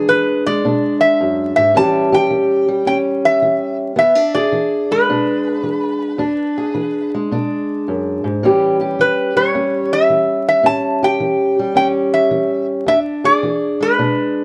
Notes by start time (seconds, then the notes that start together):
Already playing: G#3 D4 G#4
0.09 E3 B4
0.46 G#3 D5
0.65 B2 D4
1.01 E5
1.20 F#2
1.56 G#2 E5
1.74 A2 E3 G3 C#4 G4 A5
2.12 G4 G5
2.30 E3
2.68 G3
2.86 E2 C#4 G5
3.25 E5
3.42 E3
3.96 E2 B3 E5
4.15 D4
4.35 G#4 D5
4.52 E3
4.91 G#3 B4
5.09 B2 D4
5.63 E3
6.18 E2 D4
6.58 G#4
6.74 E3
7.14 G#3
7.31 B2 D4
7.88 F#2
8.24 G#2
8.43 A2 E3 G3 C#4 G4
8.81 G4
8.99 E3 B4
9.36 G3 C#5
9.55 E2 C#4
9.93 E5
10.10 E3
10.48 E5
10.63 A2 C#4 A5
11.03 G4 G5
11.20 E3
11.59 G3
11.74 E2 C#4 G5
12.14 E5
12.31 E3
12.86 E2 D4 E5
13.24 G#4 D5
13.43 E3
13.80 G#3 B4
13.99 B2 D4